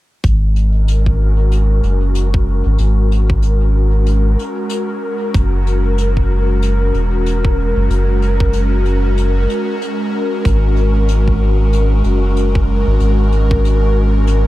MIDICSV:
0, 0, Header, 1, 5, 480
1, 0, Start_track
1, 0, Tempo, 638298
1, 180, Time_signature, 4, 2, 24, 8
1, 10881, End_track
2, 0, Start_track
2, 0, Title_t, "Synth texture"
2, 0, Program_c, 0, 99
2, 179, Note_on_c, 0, 70, 78
2, 10881, Note_off_c, 0, 70, 0
2, 10881, End_track
3, 0, Start_track
3, 0, Title_t, "Analog synth pad"
3, 0, Program_c, 1, 89
3, 179, Note_on_c, 1, 56, 78
3, 419, Note_on_c, 1, 70, 76
3, 512, Note_on_c, 1, 61, 65
3, 656, Note_on_c, 1, 66, 80
3, 10881, Note_off_c, 1, 56, 0
3, 10881, Note_off_c, 1, 61, 0
3, 10881, Note_off_c, 1, 66, 0
3, 10881, Note_off_c, 1, 70, 0
3, 10881, End_track
4, 0, Start_track
4, 0, Title_t, "Sub bass"
4, 0, Program_c, 2, 38
4, 180, Note_on_c, 2, 32, 95
4, 1361, Note_off_c, 2, 32, 0
4, 1379, Note_on_c, 2, 30, 71
4, 1972, Note_off_c, 2, 30, 0
4, 1998, Note_on_c, 2, 32, 92
4, 2087, Note_off_c, 2, 32, 0
4, 2100, Note_on_c, 2, 32, 96
4, 3280, Note_off_c, 2, 32, 0
4, 4019, Note_on_c, 2, 30, 92
4, 5200, Note_off_c, 2, 30, 0
4, 5220, Note_on_c, 2, 28, 74
4, 5813, Note_off_c, 2, 28, 0
4, 5838, Note_on_c, 2, 30, 91
4, 5927, Note_off_c, 2, 30, 0
4, 5939, Note_on_c, 2, 30, 96
4, 7120, Note_off_c, 2, 30, 0
4, 7859, Note_on_c, 2, 32, 96
4, 9040, Note_off_c, 2, 32, 0
4, 9059, Note_on_c, 2, 30, 72
4, 9653, Note_off_c, 2, 30, 0
4, 9677, Note_on_c, 2, 32, 95
4, 9766, Note_off_c, 2, 32, 0
4, 9778, Note_on_c, 2, 32, 99
4, 10881, Note_off_c, 2, 32, 0
4, 10881, End_track
5, 0, Start_track
5, 0, Title_t, "Drums"
5, 178, Note_on_c, 9, 42, 53
5, 180, Note_on_c, 9, 36, 107
5, 253, Note_off_c, 9, 42, 0
5, 255, Note_off_c, 9, 36, 0
5, 421, Note_on_c, 9, 42, 39
5, 496, Note_off_c, 9, 42, 0
5, 663, Note_on_c, 9, 42, 62
5, 738, Note_off_c, 9, 42, 0
5, 800, Note_on_c, 9, 36, 54
5, 875, Note_off_c, 9, 36, 0
5, 1140, Note_on_c, 9, 42, 64
5, 1215, Note_off_c, 9, 42, 0
5, 1379, Note_on_c, 9, 42, 38
5, 1454, Note_off_c, 9, 42, 0
5, 1615, Note_on_c, 9, 42, 59
5, 1690, Note_off_c, 9, 42, 0
5, 1759, Note_on_c, 9, 36, 90
5, 1835, Note_off_c, 9, 36, 0
5, 2093, Note_on_c, 9, 42, 54
5, 2169, Note_off_c, 9, 42, 0
5, 2344, Note_on_c, 9, 42, 45
5, 2419, Note_off_c, 9, 42, 0
5, 2479, Note_on_c, 9, 36, 92
5, 2554, Note_off_c, 9, 36, 0
5, 2575, Note_on_c, 9, 42, 58
5, 2650, Note_off_c, 9, 42, 0
5, 3057, Note_on_c, 9, 42, 51
5, 3132, Note_off_c, 9, 42, 0
5, 3302, Note_on_c, 9, 42, 41
5, 3377, Note_off_c, 9, 42, 0
5, 3530, Note_on_c, 9, 42, 61
5, 3605, Note_off_c, 9, 42, 0
5, 4018, Note_on_c, 9, 42, 55
5, 4019, Note_on_c, 9, 36, 116
5, 4093, Note_off_c, 9, 42, 0
5, 4094, Note_off_c, 9, 36, 0
5, 4261, Note_on_c, 9, 42, 41
5, 4336, Note_off_c, 9, 42, 0
5, 4497, Note_on_c, 9, 42, 64
5, 4572, Note_off_c, 9, 42, 0
5, 4639, Note_on_c, 9, 36, 57
5, 4714, Note_off_c, 9, 36, 0
5, 4981, Note_on_c, 9, 42, 56
5, 5056, Note_off_c, 9, 42, 0
5, 5221, Note_on_c, 9, 42, 38
5, 5296, Note_off_c, 9, 42, 0
5, 5461, Note_on_c, 9, 42, 55
5, 5536, Note_off_c, 9, 42, 0
5, 5599, Note_on_c, 9, 36, 94
5, 5674, Note_off_c, 9, 36, 0
5, 5944, Note_on_c, 9, 42, 56
5, 6019, Note_off_c, 9, 42, 0
5, 6182, Note_on_c, 9, 42, 41
5, 6257, Note_off_c, 9, 42, 0
5, 6319, Note_on_c, 9, 36, 89
5, 6394, Note_off_c, 9, 36, 0
5, 6415, Note_on_c, 9, 42, 59
5, 6490, Note_off_c, 9, 42, 0
5, 6659, Note_on_c, 9, 42, 39
5, 6735, Note_off_c, 9, 42, 0
5, 6899, Note_on_c, 9, 42, 54
5, 6974, Note_off_c, 9, 42, 0
5, 7142, Note_on_c, 9, 42, 44
5, 7217, Note_off_c, 9, 42, 0
5, 7382, Note_on_c, 9, 42, 52
5, 7457, Note_off_c, 9, 42, 0
5, 7860, Note_on_c, 9, 36, 106
5, 7860, Note_on_c, 9, 42, 59
5, 7935, Note_off_c, 9, 36, 0
5, 7935, Note_off_c, 9, 42, 0
5, 8095, Note_on_c, 9, 42, 39
5, 8170, Note_off_c, 9, 42, 0
5, 8336, Note_on_c, 9, 42, 59
5, 8411, Note_off_c, 9, 42, 0
5, 8480, Note_on_c, 9, 36, 54
5, 8555, Note_off_c, 9, 36, 0
5, 8820, Note_on_c, 9, 42, 57
5, 8896, Note_off_c, 9, 42, 0
5, 9054, Note_on_c, 9, 42, 38
5, 9130, Note_off_c, 9, 42, 0
5, 9299, Note_on_c, 9, 42, 57
5, 9374, Note_off_c, 9, 42, 0
5, 9440, Note_on_c, 9, 36, 93
5, 9515, Note_off_c, 9, 36, 0
5, 9776, Note_on_c, 9, 42, 50
5, 9851, Note_off_c, 9, 42, 0
5, 10020, Note_on_c, 9, 42, 37
5, 10095, Note_off_c, 9, 42, 0
5, 10159, Note_on_c, 9, 36, 89
5, 10235, Note_off_c, 9, 36, 0
5, 10263, Note_on_c, 9, 42, 51
5, 10338, Note_off_c, 9, 42, 0
5, 10732, Note_on_c, 9, 42, 54
5, 10807, Note_off_c, 9, 42, 0
5, 10881, End_track
0, 0, End_of_file